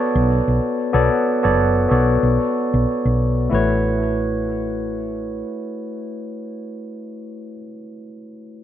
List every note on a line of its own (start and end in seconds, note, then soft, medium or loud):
0.00 0.93 B3 loud
0.00 0.93 F#4 medium
0.00 0.94 A4 medium
0.00 0.94 C#5 medium
0.00 0.95 D5 loud
0.15 0.39 B1 medium
0.48 0.59 B1 medium
0.93 1.08 B1 medium
0.93 1.39 B3 medium
0.93 1.40 F#4 medium
0.93 1.40 A4 medium
0.93 1.40 C#5 medium
0.93 1.40 D5 medium
1.43 1.86 F#1 medium
1.43 1.87 B3 medium
1.43 1.87 F#4 medium
1.43 1.87 A4 medium
1.43 1.87 C#5 medium
1.43 1.88 D5 medium
1.89 2.17 B1 medium
1.89 3.48 B3 medium
1.89 3.48 F#4 medium
1.89 3.48 A4 medium
1.89 3.49 C#5 medium
1.89 3.49 D5 medium
2.23 2.37 B1 medium
2.74 2.85 B1 medium
3.05 3.47 B1 medium
3.49 5.42 A1 medium
3.49 7.55 A3 medium
3.49 7.56 E4 medium
3.49 7.56 F#4 medium
3.49 7.57 B4 medium
3.55 7.57 C#5 medium